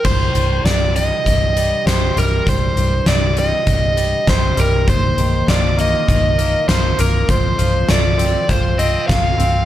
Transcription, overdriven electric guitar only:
X:1
M:4/4
L:1/8
Q:1/4=99
K:Cdor
V:1 name="Overdriven electric guitar"
c2 d e3 c B | c2 d e3 c B | c2 d e3 c B | c2 d2 c e f2 |]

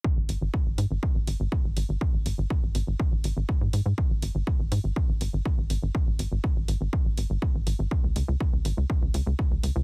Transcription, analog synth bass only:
X:1
M:4/4
L:1/16
Q:1/4=122
K:C#dor
V:1 name="Analog synth bass" clef=bass
z G,,, G,,, G,,, z G,,, G,, G,,, z G,,, G,,, G,,, z G,,, G,,, G,,, | z G,,, G,,, G,,, z G,,, G,,, G,,, z G,,, G,,, G,,, z G,, G,, G,, | z G,,, G,,, G,,, z G,,, G,, G,,, z G,,, G,,, G,,, z G,,, G,,, G,,, | z G,,, G,,, G,,, z G,,, G,,, G,,, z G,,, G,,, G,,, z G,,, G,,, G,,, |
z C,, C,, C,, z C,, G,,, C,, z C,, C,, C,, z C,, C,, C,, |]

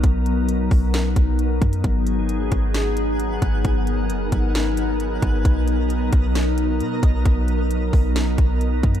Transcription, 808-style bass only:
X:1
M:4/4
L:1/8
Q:1/4=133
K:B
V:1 name="808-style bass" clef=bass
B,,,3 B,,,2 B,,,2 F,, | G,,,3 G,,,4 G,,, | G,,,2 F,,, G,,,4 G,,, | B,,,3 B,,,3 B,, B,,, |
B,,,3 B,,,2 B,,,2 F,, |]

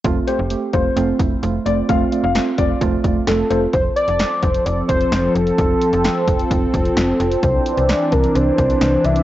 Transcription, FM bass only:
X:1
M:4/4
L:1/16
Q:1/4=130
K:F
V:1 name="FM bass" clef=bass
F,,,2 z F,,,2 z F,,,2 F,,,2 F,,,2 F,,,2 F,,,2 | F,,,2 z F,,,2 z F,,,2 F,,,2 F,,,2 F,,,2 F,,,2 | F,,,2 z F,,,2 z F,,,2 F,,,2 F,,,2 F,,,2 F,,,2 | F,,,2 z F,,,2 z F,,,2 F,,,2 F,,,2 F,,,2 F,,,2 |
C,,2 z C,,2 z C,,2 C,,2 C,,2 C,,2 C,,2 |]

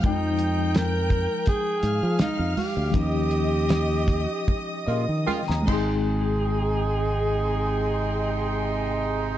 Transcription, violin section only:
X:1
M:4/4
L:1/8
Q:"Swing 16ths" 1/4=76
K:Ab
V:1 name="Violin section"
[gg']4- [gg'] [ff']3 | [ee']6- [ee'] [Agc']- | [Agc']8 |]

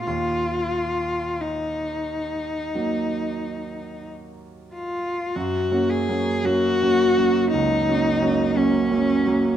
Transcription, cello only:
X:1
M:4/4
L:1/8
Q:1/4=54
K:Ebm
V:1 name="Cello"
F2 E4 z F | [K:F#] F G F2 D2 C2 |]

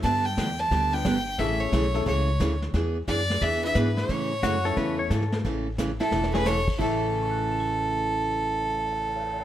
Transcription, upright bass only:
X:1
M:4/4
L:1/8
Q:"Swing" 1/4=177
K:A
V:1 name="Upright bass" clef=bass
=G,,2 E,,2 D,,2 =G,,,2 | A,,,2 B,,,2 C,,2 D,,2 | E,,2 F,,2 E,,2 G,,2 | A,,2 F,,2 E,,2 G,,2 |
A,,,4 E,,,4 | A,,,8- | A,,,8 |]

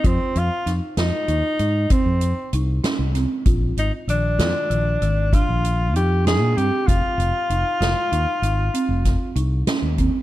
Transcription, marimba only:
X:1
M:11/8
L:1/8
Q:1/4=97
K:Fm
V:1 name="Marimba"
F2 E F E E C2 E D C | F2 E, F E, E, =D2 E D C | F2 E F E E C2 E D C |]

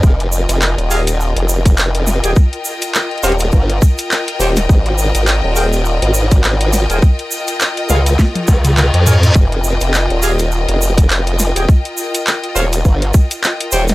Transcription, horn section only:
X:1
M:4/4
L:1/16
Q:"Swing 16ths" 1/4=103
K:Fm
V:1 name="Horn section"
z6 [GAef] z8 [GAeg] | z6 [Gcdf] z6 z [Gcdg] z | z6 [ABcg] z8 [ABca] | z6 [ABdf] z6 z [ABda] z |
z6 [GAef] z8 [GAeg] | z6 [Gcdf] z6 z [Gcdg] z |]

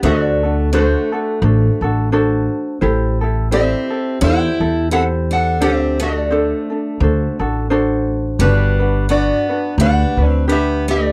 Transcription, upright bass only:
X:1
M:4/4
L:1/8
Q:"Swing" 1/4=86
K:Dmix
V:1 name="Upright bass" clef=bass
D,,4 A,,, A,,,3 | A,,,4 E,, E,,3 | D,,4 D,, A,,,3 | G,,,4 D,, D,,3 |]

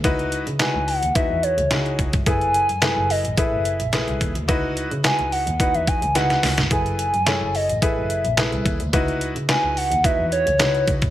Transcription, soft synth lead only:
X:1
M:4/4
L:1/16
Q:1/4=108
K:Dblyd
V:1 name="Soft synth lead"
z4 a2 _g2 _f2 d4 z2 | a6 e2 _f6 z2 | z4 a2 _g2 g _f a2 g3 z | a6 e2 _f6 z2 |
z4 a2 _g2 _f2 d4 z2 |]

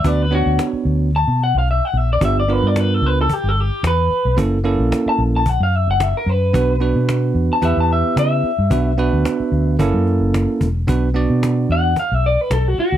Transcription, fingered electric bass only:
X:1
M:4/4
L:1/16
Q:"Swing 16ths" 1/4=111
K:Bm
V:1 name="Fingered electric bass" clef=bass
D,,3 D,, z2 D,,3 B,,2 B,,,2 z ^A,,,2 | G,,,3 G,,3 C,,2 z G,,,2 z E,,2 z B,,, | F,,,3 ^A,,, z2 A,,,3 F,,2 F,,,2 z F,,2 | B,,,3 B,,3 E,, z E,, E,,2 z C,2 z G,, |
B,,,3 D,, z2 D,,2 F,,, F,,2 F,,,2 z E,,,2 | B,,,3 B,,3 E,,2 z B,,,2 z B,,,2 z D,, |]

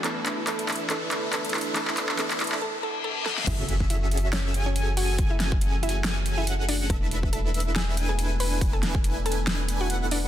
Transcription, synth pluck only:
X:1
M:4/4
L:1/16
Q:"Swing 16ths" 1/4=140
K:F#m
V:1 name="Synth pluck"
[Aa]3 z [Aa]3 z [Aa]3 z [Aa]3 z | [Aa]3 z [Aa]3 z [Aa]2 [Aa]2 [Aa]2 [Aa]2 | [Ee]3 z [Ee]3 z [Cc]3 [Cc]3 [Ff]2- | [Ff] [Ee]3 z2 [Ee]2 z3 [Ee]3 [Dd]2 |
[Aa]3 z [Aa]3 z [Gg]3 [Gg]3 [Bb]2- | [Bb] [Aa]3 z2 [Aa]2 z3 [Ff]3 [Dd]2 |]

